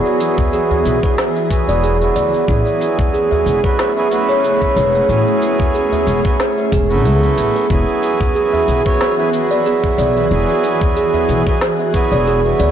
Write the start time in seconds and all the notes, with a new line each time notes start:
Already playing: E3 F#3 B3 E4 F#4 G#4
0.06 cabasa
0.20 E4, open hi-hat, cabasa
0.38 kick, udu, cabasa
0.53 G#4, cabasa
0.71 E5, udu, cabasa
0.85 B1, open hi-hat, cabasa
1.02 F#3 B3 E4 G#4 B4, kick, cabasa
1.18 snare, cabasa
1.36 E5, cabasa
1.49 F#3 B3 E4 G#4, kick, open hi-hat, cabasa
1.68 E1 D5, cabasa
1.83 G#4, cabasa
2.00 F#3 B3 E4, cabasa
2.16 D2 D5, open hi-hat, cabasa
2.34 cabasa
2.46 A1 F#3 A3 B3 C#4 E4 G#4, kick, cabasa
2.50 G#4
2.67 cabasa
2.81 E4, open hi-hat, cabasa
2.99 kick, udu, cabasa
3.13 G#4, cabasa
3.31 E5, udu, cabasa
3.46 E1, open hi-hat, cabasa
3.63 F#3 B3 E4 B4, kick, cabasa
3.79 snare, cabasa
3.96 F#3 B3 E4 G#4 E5, cabasa
4.09 F#3 B3 E4, open hi-hat, cabasa
4.14 B4
4.29 C#5, cabasa
4.44 G#4, cabasa
4.62 kick, cabasa
4.76 E1 C#5, open hi-hat, cabasa
4.95 cabasa
5.07 A1 F#3 B3 E4 G#4, cabasa
5.28 cabasa
5.42 E4, open hi-hat, cabasa
5.60 kick, udu, cabasa
5.75 G#4, cabasa
5.92 E5, udu, cabasa
6.07 E1, open hi-hat, cabasa
6.24 F#3 B3 E4 G#4 B4, kick, cabasa
6.40 snare, cabasa
6.58 E5, cabasa
6.72 E1 G#4, kick, open hi-hat, cabasa
6.88 F#3 B3 C#4 E4, cabasa
6.92 A3
7.05 C#2 G#4, cabasa
7.23 cabasa
7.38 A1 B3, open hi-hat, cabasa
7.56 B4, cabasa
7.68 E1 E3 F#3 B3 E4 F#4 G#4, kick, cabasa
7.72 G#4
7.88 cabasa
8.03 E4, open hi-hat, cabasa
8.20 kick, udu, cabasa
8.35 G#4, cabasa
8.53 E5, udu, cabasa
8.68 B1, open hi-hat, cabasa
8.85 F#3 B3 E4 B4 C#5, kick, cabasa
9.01 snare, cabasa
9.18 F#3 B3 E4 G#4 E5, cabasa
9.31 F#3 B3 E4, open hi-hat, cabasa
9.51 D5, cabasa
9.66 G#4, cabasa
9.84 kick, cabasa
9.98 B1 D5, open hi-hat, cabasa
10.16 cabasa
10.29 E1 F#3 B3 E4 G#4, cabasa
10.49 cabasa
10.64 E4, open hi-hat, cabasa
10.81 kick, udu, cabasa
10.96 G#4, cabasa
11.14 E5, udu, cabasa
11.29 B1, open hi-hat, cabasa
11.46 F#3 B3 E4 G#4 B4, kick, cabasa
11.61 snare, cabasa
11.79 E5, cabasa
11.93 F#3 B3 E4 G#4, kick, open hi-hat, cabasa
12.12 E1 D5, cabasa
12.27 G#4, cabasa
12.43 F#3 B3 E4, cabasa
12.60 D2 D5, open hi-hat, cabasa